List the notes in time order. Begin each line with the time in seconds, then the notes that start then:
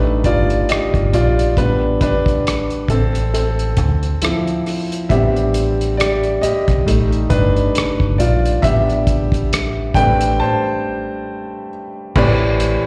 Already playing: A1 G3 A3 D4 D#4 B4
0.24 G1 F4 D5, kick, closed hi-hat
0.50 closed hi-hat
0.69 G4 D#5, cross-stick, closed hi-hat
0.94 G1, kick, closed hi-hat
1.13 A#1 F4 D5, closed hi-hat
1.39 closed hi-hat
1.57 A1 G3 B3 D4 B4, kick, closed hi-hat
2.01 D4 B4, kick, closed hi-hat
2.26 kick, closed hi-hat
2.47 cross-stick, closed hi-hat
2.70 closed hi-hat
2.88 A1 C4 A4, kick, closed hi-hat
3.15 closed hi-hat
3.34 C4 A4, closed hi-hat
3.59 closed hi-hat
3.77 D2, kick, closed hi-hat
4.03 closed hi-hat
4.22 F3 C4 E4, cross-stick, closed hi-hat
4.47 closed hi-hat
4.66 cross-stick, open hi-hat
4.92 closed hi-hat
5.09 A1 G3 B3 C4 D4 G4 E5, kick, closed hi-hat
5.36 closed hi-hat
5.54 closed hi-hat
5.81 closed hi-hat
5.97 G4 D5, cross-stick, closed hi-hat
6.23 closed hi-hat
6.41 G4 D#5, muted fingered electric bass stroke, closed hi-hat
6.68 B1, kick, cross-stick, closed hi-hat
6.86 A1 G3 A3 D#4, closed hi-hat
7.12 closed hi-hat
7.30 G1 D4 B4, kick, closed hi-hat
7.56 closed hi-hat
7.75 cross-stick, closed hi-hat
8.00 G1, kick
8.18 A#1 F4 D5, closed hi-hat
8.45 closed hi-hat
8.62 A1 G3 B3 D4 G4 E5, kick, closed hi-hat
8.90 closed hi-hat
9.07 kick, closed hi-hat
9.32 kick, closed hi-hat
9.53 cross-stick, closed hi-hat
9.94 A1 G3 A3 C4 D4 B4 G5, kick, closed hi-hat
10.21 closed hi-hat
10.40 C5 A5
12.15 A1 A2 E3 C4 G4 B4 D5, kick, crash
12.60 closed hi-hat